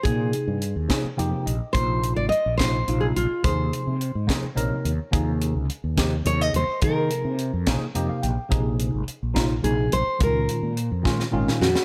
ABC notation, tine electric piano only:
X:1
M:6/8
L:1/16
Q:3/8=71
K:Eb
V:1 name="Tine electric piano"
z8 g2 e2 | z12 | z8 _d4 | z12 |
z8 e f g2 | z12 | z12 |]
V:2 name="Tine electric piano"
[C,F,B,EA]4 z2 [C,F,B,EA]2 [C,F,B,EG]2 z2 | [C,F,B,EF]4 z2 [C,F,B,EF]2 [C,F,B,EF]2 z2 | [C,F,B,EA]4 z2 [C,F,B,EA]2 [C,F,B,EB]2 z2 | [C,F,B,EA]4 z2 [C,F,B,EG]2 [C,F,B,EA]2 z2 |
[C,F,B,EA]4 z2 [C,F,B,EA]2 [C,F,B,EG]2 z2 | [C,F,B,EA]4 z2 [C,F,B,EF]2 [C,F,B,EA]2 z2 | [B,,E,A,_DF]4 z2 [B,,E,A,DF]2 [B,,E,A,DF]2 z2 |]